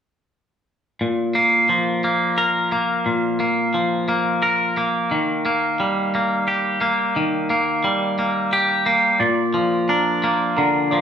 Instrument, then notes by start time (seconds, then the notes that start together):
clean electric guitar
1.01 A#2
1.35 A#3
1.69 F3
2.04 A#3
2.38 A#4
2.72 A#3
3.06 A#2
3.40 A#3
3.74 F3
4.09 A#3
4.42 A#4
4.77 A#3
5.11 D#3
5.46 A#3
5.80 G3
6.15 A#3
6.48 G4
6.81 A#3
7.16 D#3
7.50 A#3
7.84 G3
8.19 A#3
8.53 G4
8.86 A#3
9.20 A#2 D5
9.54 F3
9.89 D4 A#4
10.24 A#3
10.57 D3 A#4
10.91 F3 D5